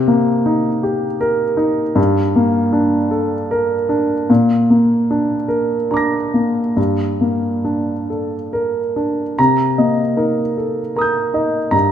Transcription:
grand piano
Already playing: C3
0.08 A#3
0.46 D#4
0.83 G4
1.21 A#4
1.57 D#4
1.95 G2
2.36 A#3
2.73 D4
3.11 A4
3.51 A#4
3.89 D4
4.30 A#2
4.70 A#3
5.11 D4
5.48 A#4
5.91 D4 A#5 D6
5.97 A#6
6.34 A#3
6.77 G2
7.21 A#3
7.65 D4
8.10 A4
8.53 A#4
8.96 D4
9.39 C3 A#5
9.78 A#3 D#5
10.17 D#4 A#4
10.57 A4
10.96 A#4 A#5 D#6
11.01 G6
11.34 D#4 D#5
11.71 G2 A#5

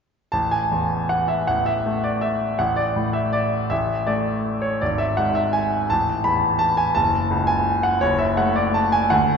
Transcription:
grand piano
0.32 A1 A5
0.51 G#5
0.71 E2
1.09 F#5
1.28 E5
1.47 A1 F#5
1.66 E5
1.86 A3
2.04 D5
2.21 E5
2.59 A1 F#5
2.76 D5
2.96 A2
3.13 E5
3.33 D5
3.70 A1 E5
4.07 A3 D5
4.62 C#5
4.81 G#1 D5
4.98 E5
5.17 G#2 F#5
5.35 E5
5.53 G#5
5.90 A1 A5
6.24 E2 B5
6.59 A5
6.77 G#5
6.95 F#1 A5
7.31 C#2
7.47 G#5
7.83 F#5
8.01 F#1 C#5
8.18 E5
8.37 A3 F#5
8.56 D5
8.74 A5
8.92 G#5
9.10 D2 F#5

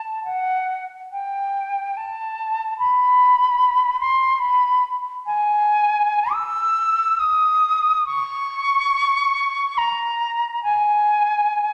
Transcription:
flute
Already playing: A5
0.24 F#5
1.11 G5
1.96 A5
2.78 B5
4.00 C6
4.39 B5
5.26 G#5
6.32 E6
7.19 D#6
8.06 C#6
9.77 A#5
10.63 G#5

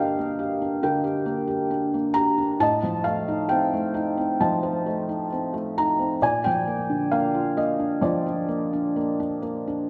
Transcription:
felt piano
Already playing: G2 D3 A#3 D4 G4 A#4 D#5 F5 G5
0.19 A#3
0.39 G4
0.62 D4
0.82 D3 A#4 G5
1.04 G4
1.26 A#3
1.47 G4
1.71 D4
1.94 A#3
2.14 G4 A#5
2.38 D4
2.60 A2 D#5 A5
2.83 F3
3.04 A3 F5
3.28 D#4
3.49 C4 G5
3.73 A3
3.94 D#4
4.17 C4
4.41 F3 D#5 A5
4.63 C5
4.86 A3
5.09 D#4
5.32 C4
5.54 A3
5.78 D#4 A#5
5.99 C4
6.22 A#2 D5 G#5
6.44 F3 G5
6.67 A#3
6.90 D3
7.12 A#3 F5
7.34 F4
7.57 A#3 D#5
7.79 D4
8.01 F3 F4 D5
8.26 D4
8.48 A#3
8.73 D4
8.96 A#3
9.20 D4
9.42 A#3
9.68 D4

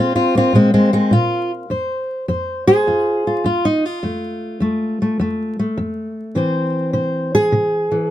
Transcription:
steel-string acoustic guitar
Already playing: A#2
0.00 C4 F4
0.15 C4 F4
0.35 A#3 C4 F4
0.53 A#2 G#3 C4
0.74 G#3 C4
0.93 G#3 C4
1.11 A#2 F4
1.70 F2 C5
2.28 F2 C5
2.67 G#4 C5
2.87 F2 F4
3.27 F4
3.44 F2 F4
3.65 D#4
3.85 F4
4.03 F2 A3
4.60 F2 A3
5.02 A3
5.20 F2 A3
5.59 A3
5.78 F2
6.35 C3 E3 C4 C5
6.93 C3 C5
7.35 G#4
7.52 C3
7.91 E3

